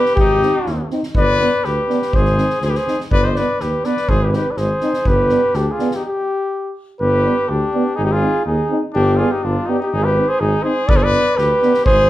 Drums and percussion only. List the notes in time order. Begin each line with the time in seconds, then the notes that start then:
0.05 snare
0.17 kick
0.42 snare
0.66 snare
0.90 snare
1.03 snare
1.15 kick
1.40 snare
1.64 snare
1.90 snare
2.02 snare
2.13 kick
2.25 snare
2.38 snare
2.50 snare
2.61 snare
2.75 snare
2.87 snare
3.00 snare
3.11 kick
3.35 snare
3.60 snare
3.84 snare
3.97 snare
4.09 kick
4.33 snare
4.57 snare
4.80 snare
4.93 snare
5.05 kick
5.29 snare
5.53 snare
5.79 snare
5.91 snare
10.89 kick
11.12 snare
11.38 snare
11.62 snare
11.74 snare
11.86 kick